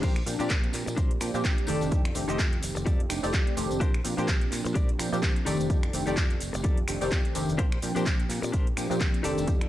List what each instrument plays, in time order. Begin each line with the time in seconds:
0.02 fingered electric bass A#1, analog polysynth F3 A#3 C4 D4 G4, clean electric guitar D4 G4 A#4 C5, kick, closed hi-hat, tambourine, crash, shaker
0.16 finger snap, closed hi-hat
0.26 fingered electric bass A#2, analog polysynth F3 A#3 C4 D4 G4, open hi-hat, tambourine, shaker
0.39 fingered electric bass A#2, analog polysynth F3 A#3 C4 D4 G4, clean electric guitar D4 G4 A#4 D5, closed hi-hat, tambourine, shaker
0.49 fingered electric bass A#1, kick, clap, closed hi-hat, tambourine, shaker
0.64 closed hi-hat
0.73 fingered electric bass A#2, muted clean electric guitar stroke, clap, open hi-hat, tambourine, shaker
0.86 fingered electric bass A#2, muted clean electric guitar stroke, closed hi-hat, tambourine, shaker
0.96 fingered electric bass A#1, clean electric guitar D4 G4 A#4 C5, kick, closed hi-hat, shaker
1.11 closed hi-hat
1.20 fingered electric bass A#2, analog polysynth F3 A#3 C4 D4 G4, finger snap, muted clean electric guitar stroke, open hi-hat, tambourine, shaker
1.34 fingered electric bass A#2, analog polysynth F3 A#3 C4 D4 G4, tambourine, shaker
1.44 fingered electric bass A#1, kick, clap, closed hi-hat, tambourine, shaker
1.58 closed hi-hat
1.67 fingered electric bass F1, analog polysynth D#3 A3 C4 D4 G4, clean electric guitar D#4 G4 A4 D5, open hi-hat, tambourine, shaker
1.81 fingered electric bass F1, tambourine, shaker
1.91 fingered electric bass F2, analog polysynth D#3 A3 C4 D4 G4, kick, closed hi-hat, tambourine, shaker
2.05 finger snap, closed hi-hat
2.15 fingered electric bass F1, analog polysynth D#3 A3 C4 D4 G4, open hi-hat, tambourine, shaker
2.28 fingered electric bass F1, analog polysynth D#3 A3 C4 G4, clean electric guitar D#4 G4 A4 D#5, closed hi-hat, tambourine, shaker
2.39 fingered electric bass F2, kick, clap, closed hi-hat, tambourine, shaker
2.53 closed hi-hat
2.62 fingered electric bass F1, muted clean electric guitar stroke, open hi-hat, tambourine, shaker
2.75 fingered electric bass F1, muted clean electric guitar stroke, closed hi-hat, tambourine, shaker
2.86 fingered electric bass F2, clean electric guitar D#4 G4 A4 D5, kick, closed hi-hat, tambourine, shaker
3.00 closed hi-hat
3.09 fingered electric bass F1, analog polysynth D#3 A3 C4 D4 G4, finger snap, muted clean electric guitar stroke, open hi-hat, tambourine, shaker
3.23 fingered electric bass F1, analog polysynth D#3 A3 C4 G4 D5, open hi-hat, tambourine, shaker
3.34 fingered electric bass F2, kick, clap, closed hi-hat, shaker
3.47 closed hi-hat
3.57 fingered electric bass F1, analog polysynth D#3 A3 C4 D4 G4, muted clean electric guitar stroke, open hi-hat, tambourine, shaker
3.71 fingered electric bass F1, tambourine, shaker
3.80 analog polysynth F3 A#3 C4 D4 G4, clean electric guitar D4 G4 A#4 C5, kick, closed hi-hat, shaker
3.94 finger snap, closed hi-hat
4.04 fingered electric bass A#2, analog polysynth F3 A#3 C4 D4 G4, open hi-hat, tambourine, shaker
4.17 fingered electric bass A#2, analog polysynth F3 A#3 C4 D4 G4, clean electric guitar D4 G4 A#4 C5, tambourine, shaker
4.28 fingered electric bass A#1, kick, clap, closed hi-hat, shaker
4.41 closed hi-hat
4.51 fingered electric bass A#2, muted clean electric guitar stroke, clap, open hi-hat, tambourine, shaker
4.64 fingered electric bass A#2, muted clean electric guitar stroke, closed hi-hat, tambourine, shaker
4.74 fingered electric bass A#1, clean electric guitar D4 G4 A#4 D5, kick, closed hi-hat, tambourine, shaker
4.89 closed hi-hat
4.98 fingered electric bass A#2, analog polysynth F3 A#3 C4 D4 G4, finger snap, muted clean electric guitar stroke, open hi-hat, tambourine, shaker
5.12 fingered electric bass A#2, analog polysynth F3 A#3 C4 D4 G4, tambourine, shaker
5.23 fingered electric bass A#1, kick, clap, closed hi-hat, shaker
5.36 closed hi-hat
5.45 fingered electric bass F1, analog polysynth D#3 A3 C4 D4 G4, clean electric guitar D#4 G4 A4 D5, open hi-hat, tambourine, shaker
5.60 fingered electric bass F1, tambourine, shaker
5.70 fingered electric bass F2, analog polysynth D#3 A3 C4 D4 G4, kick, closed hi-hat, shaker
5.83 finger snap, closed hi-hat
5.93 fingered electric bass F1, analog polysynth D#3 A3 C4 D4 G4, open hi-hat, tambourine, shaker
6.06 fingered electric bass F1, analog polysynth D#3 A3 C4 G4 D5, clean electric guitar D#4 G4 A4 D5, closed hi-hat, tambourine, shaker
6.17 fingered electric bass F2, kick, clap, closed hi-hat, shaker
6.30 closed hi-hat
6.40 fingered electric bass F1, muted clean electric guitar stroke, open hi-hat, tambourine, shaker
6.53 fingered electric bass F1, muted clean electric guitar stroke, closed hi-hat, tambourine, shaker
6.64 fingered electric bass F2, clean electric guitar D#4 G4 A4 D5, kick, closed hi-hat, shaker
6.77 closed hi-hat
6.87 fingered electric bass F1, analog polysynth D#3 A3 C4 D4 G4, finger snap, muted clean electric guitar stroke, open hi-hat, tambourine, shaker
7.01 fingered electric bass F1, analog polysynth D#3 A3 C4 G4 D5, open hi-hat, tambourine, shaker
7.12 fingered electric bass F2, kick, clap, closed hi-hat, tambourine, shaker
7.25 closed hi-hat
7.34 fingered electric bass F1, analog polysynth D#3 A3 C4 D4 G4, muted clean electric guitar stroke, open hi-hat, tambourine, shaker
7.49 fingered electric bass F1, tambourine, shaker
7.58 analog polysynth F3 A#3 C4 D4 G4, clean electric guitar D4 G4 A#4 C5, kick, closed hi-hat, shaker
7.72 finger snap, closed hi-hat
7.82 fingered electric bass A#2, analog polysynth F3 A#3 C4 D4 G4, open hi-hat, tambourine, shaker
7.95 fingered electric bass A#2, analog polysynth F3 A#3 C4 D4 G4, clean electric guitar D4 G4 A#4 C5, closed hi-hat, tambourine, shaker
8.06 fingered electric bass A#1, kick, clap, closed hi-hat, shaker
8.20 closed hi-hat
8.29 fingered electric bass A#2, muted clean electric guitar stroke, clap, open hi-hat, tambourine, shaker
8.42 fingered electric bass A#2, muted clean electric guitar stroke, closed hi-hat, tambourine, shaker
8.52 fingered electric bass A#1, clean electric guitar D4 G4 A#4 C5, kick, closed hi-hat, shaker
8.67 closed hi-hat
8.76 fingered electric bass A#2, analog polysynth F3 A#3 C4 D4 G4, finger snap, muted clean electric guitar stroke, open hi-hat, tambourine, shaker
8.90 fingered electric bass A#2, analog polysynth F3 A#3 C4 D4 G4, tambourine, shaker
9.01 fingered electric bass A#1, kick, clap, closed hi-hat, shaker
9.14 closed hi-hat
9.23 fingered electric bass F1, analog polysynth D#3 A3 C4 D4 G4, clean electric guitar D#4 G4 A4 D5, open hi-hat, tambourine, shaker
9.38 fingered electric bass F1, tambourine, shaker
9.47 fingered electric bass F2, analog polysynth D#3 A3 C4 D4 G4, kick, closed hi-hat, tambourine, shaker
9.61 finger snap, closed hi-hat